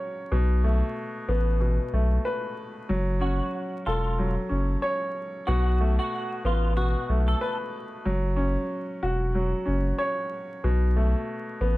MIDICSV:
0, 0, Header, 1, 4, 480
1, 0, Start_track
1, 0, Key_signature, 3, "minor"
1, 0, Tempo, 645161
1, 233, Time_signature, 4, 2, 24, 8
1, 8761, End_track
2, 0, Start_track
2, 0, Title_t, "Clean electric guitar"
2, 0, Program_c, 0, 27
2, 2391, Note_on_c, 0, 66, 75
2, 2843, Note_off_c, 0, 66, 0
2, 2873, Note_on_c, 0, 65, 64
2, 3228, Note_off_c, 0, 65, 0
2, 4068, Note_on_c, 0, 66, 106
2, 4425, Note_off_c, 0, 66, 0
2, 4456, Note_on_c, 0, 66, 88
2, 4776, Note_off_c, 0, 66, 0
2, 4807, Note_on_c, 0, 65, 74
2, 5017, Note_off_c, 0, 65, 0
2, 5035, Note_on_c, 0, 66, 82
2, 5389, Note_off_c, 0, 66, 0
2, 5415, Note_on_c, 0, 69, 80
2, 5629, Note_off_c, 0, 69, 0
2, 8761, End_track
3, 0, Start_track
3, 0, Title_t, "Upright piano"
3, 0, Program_c, 1, 0
3, 0, Control_c, 1, 64, 127
3, 0, Note_on_c, 1, 54, 78
3, 0, Note_on_c, 1, 61, 72
3, 0, Note_on_c, 1, 66, 98
3, 0, Note_on_c, 1, 73, 108
3, 228, Note_off_c, 1, 61, 0
3, 231, Note_off_c, 1, 73, 0
3, 233, Note_off_c, 1, 54, 0
3, 234, Note_off_c, 1, 66, 0
3, 235, Note_on_c, 1, 47, 97
3, 242, Control_c, 1, 64, 0
3, 390, Control_c, 1, 64, 127
3, 476, Note_on_c, 1, 57, 79
3, 957, Note_on_c, 1, 59, 98
3, 1184, Note_off_c, 1, 47, 0
3, 1195, Note_on_c, 1, 47, 70
3, 1428, Note_off_c, 1, 57, 0
3, 1439, Note_on_c, 1, 57, 80
3, 1673, Note_on_c, 1, 71, 97
3, 2151, Note_on_c, 1, 54, 97
3, 2153, Note_off_c, 1, 71, 0
3, 2154, Note_off_c, 1, 47, 0
3, 2155, Note_off_c, 1, 59, 0
3, 2156, Note_off_c, 1, 57, 0
3, 2161, Control_c, 1, 64, 0
3, 2275, Control_c, 1, 64, 127
3, 2383, Note_on_c, 1, 61, 82
3, 2876, Note_on_c, 1, 69, 96
3, 3104, Note_off_c, 1, 54, 0
3, 3115, Note_on_c, 1, 54, 77
3, 3332, Note_off_c, 1, 61, 0
3, 3343, Note_on_c, 1, 61, 68
3, 3588, Note_on_c, 1, 73, 108
3, 4068, Note_off_c, 1, 61, 0
3, 4070, Note_off_c, 1, 73, 0
3, 4074, Note_off_c, 1, 54, 0
3, 4075, Note_off_c, 1, 69, 0
3, 4076, Note_on_c, 1, 47, 95
3, 4082, Control_c, 1, 64, 0
3, 4212, Control_c, 1, 64, 127
3, 4316, Note_on_c, 1, 57, 81
3, 4798, Note_on_c, 1, 59, 101
3, 5024, Note_off_c, 1, 47, 0
3, 5036, Note_on_c, 1, 47, 76
3, 5267, Note_off_c, 1, 57, 0
3, 5278, Note_on_c, 1, 57, 82
3, 5514, Note_on_c, 1, 71, 99
3, 5992, Note_on_c, 1, 54, 99
3, 5993, Note_off_c, 1, 71, 0
3, 5994, Note_off_c, 1, 47, 0
3, 5996, Note_off_c, 1, 57, 0
3, 5996, Note_off_c, 1, 59, 0
3, 6003, Control_c, 1, 64, 0
3, 6120, Control_c, 1, 64, 127
3, 6223, Note_on_c, 1, 61, 81
3, 6715, Note_on_c, 1, 66, 95
3, 6943, Note_off_c, 1, 54, 0
3, 6954, Note_on_c, 1, 54, 81
3, 7172, Note_off_c, 1, 61, 0
3, 7183, Note_on_c, 1, 61, 70
3, 7429, Note_on_c, 1, 73, 107
3, 7908, Note_off_c, 1, 61, 0
3, 7911, Note_off_c, 1, 73, 0
3, 7913, Note_off_c, 1, 54, 0
3, 7914, Note_off_c, 1, 66, 0
3, 7915, Note_on_c, 1, 47, 95
3, 7923, Control_c, 1, 64, 0
3, 8044, Control_c, 1, 64, 127
3, 8156, Note_on_c, 1, 57, 82
3, 8638, Note_on_c, 1, 59, 99
3, 8761, Note_off_c, 1, 47, 0
3, 8761, Note_off_c, 1, 57, 0
3, 8761, Note_off_c, 1, 59, 0
3, 8761, End_track
4, 0, Start_track
4, 0, Title_t, "Sub bass"
4, 0, Program_c, 2, 38
4, 236, Note_on_c, 2, 35, 116
4, 615, Note_off_c, 2, 35, 0
4, 956, Note_on_c, 2, 33, 89
4, 1334, Note_off_c, 2, 33, 0
4, 1437, Note_on_c, 2, 35, 93
4, 1625, Note_off_c, 2, 35, 0
4, 2157, Note_on_c, 2, 30, 103
4, 2535, Note_off_c, 2, 30, 0
4, 2877, Note_on_c, 2, 28, 93
4, 3255, Note_off_c, 2, 28, 0
4, 3357, Note_on_c, 2, 30, 92
4, 3545, Note_off_c, 2, 30, 0
4, 4078, Note_on_c, 2, 35, 118
4, 4456, Note_off_c, 2, 35, 0
4, 4796, Note_on_c, 2, 33, 88
4, 5174, Note_off_c, 2, 33, 0
4, 5277, Note_on_c, 2, 35, 96
4, 5465, Note_off_c, 2, 35, 0
4, 5998, Note_on_c, 2, 30, 102
4, 6375, Note_off_c, 2, 30, 0
4, 6718, Note_on_c, 2, 28, 94
4, 7095, Note_off_c, 2, 28, 0
4, 7198, Note_on_c, 2, 30, 91
4, 7386, Note_off_c, 2, 30, 0
4, 7916, Note_on_c, 2, 35, 113
4, 8295, Note_off_c, 2, 35, 0
4, 8637, Note_on_c, 2, 33, 91
4, 8761, Note_off_c, 2, 33, 0
4, 8761, End_track
0, 0, End_of_file